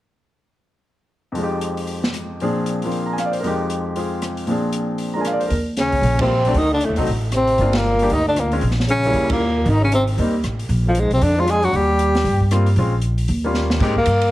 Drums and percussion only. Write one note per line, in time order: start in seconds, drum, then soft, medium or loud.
1.35 open hi-hat soft
1.61 closed hi-hat soft
1.77 open hi-hat soft
1.87 open hi-hat soft
2.04 snare soft
2.14 cross-stick soft
2.14 closed hi-hat soft
2.40 open hi-hat soft
2.66 closed hi-hat soft
2.82 open hi-hat soft
2.92 open hi-hat soft
3.18 cross-stick soft
3.18 closed hi-hat soft
3.33 open hi-hat soft
3.44 open hi-hat soft
3.70 closed hi-hat soft
3.96 open hi-hat soft
4.22 cross-stick medium
4.22 closed hi-hat soft
4.37 open hi-hat soft
4.47 open hi-hat soft
4.73 closed hi-hat soft
4.98 open hi-hat soft
5.25 cross-stick soft
5.25 closed hi-hat soft
5.41 open hi-hat soft
5.50 open hi-hat soft
5.77 snare soft
5.77 closed hi-hat soft
5.92 kick soft
5.92 open hi-hat soft
6.03 open hi-hat soft
6.19 kick medium
6.19 ride medium
6.45 open hi-hat soft
6.54 open hi-hat soft
6.80 closed hi-hat soft
6.96 open hi-hat soft
7.06 open hi-hat soft
7.32 cross-stick soft
7.32 closed hi-hat soft
7.47 open hi-hat soft
7.58 open hi-hat soft
7.73 snare medium
7.73 ride medium
7.99 open hi-hat soft
8.10 open hi-hat soft
8.36 cross-stick medium
8.36 closed hi-hat soft
8.51 open hi-hat soft
8.61 open hi-hat soft
8.71 snare soft
8.80 snare soft
8.88 closed hi-hat soft
9.03 open hi-hat soft
9.13 open hi-hat soft
9.30 kick medium
9.30 ride medium
9.66 open hi-hat soft
9.92 closed hi-hat soft
10.07 open hi-hat soft
10.18 open hi-hat soft
10.44 cross-stick soft
10.44 closed hi-hat soft
10.59 open hi-hat soft
10.69 open hi-hat soft
10.95 closed hi-hat soft
11.11 open hi-hat soft
11.21 open hi-hat soft
11.47 cross-stick medium
11.47 closed hi-hat soft
11.63 open hi-hat soft
11.73 open hi-hat soft
11.99 closed hi-hat soft
12.15 snare medium
12.15 open hi-hat soft
12.25 open hi-hat soft
12.41 kick soft
12.51 cross-stick medium
12.51 closed hi-hat soft
12.66 open hi-hat soft
12.76 open hi-hat soft
13.01 closed hi-hat soft
13.18 open hi-hat soft
13.28 open hi-hat soft
13.54 snare soft
13.70 snare medium
13.80 kick medium
13.80 snare soft
13.80 crash medium
13.96 kick medium
14.06 hi-hat pedal medium
14.06 ride medium
14.21 ride soft